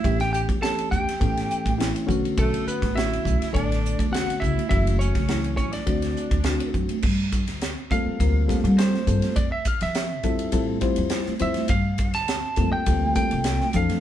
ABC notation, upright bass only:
X:1
M:4/4
L:1/16
Q:1/4=103
K:Bm
V:1 name="Upright bass" clef=bass
A,,,3 E,,2 z E,, z A,,2 z A,,,2 z B,,, z | B,,, z2 A,,,3 B,,, z A,,,3 E,,2 z C,, z | F,,,3 C,,3 A,,, z D,,2 z D,,2 z F,, z | [K:Gdor] G,,3 D,,2 z F,, z D,,2 z G,2 z G,, z |
F,, z2 F,3 F,,2 A,,2 z F,, z2 F,, z | G,,3 D,,2 z F,, z D,,2 z C,,2 z F,, z |]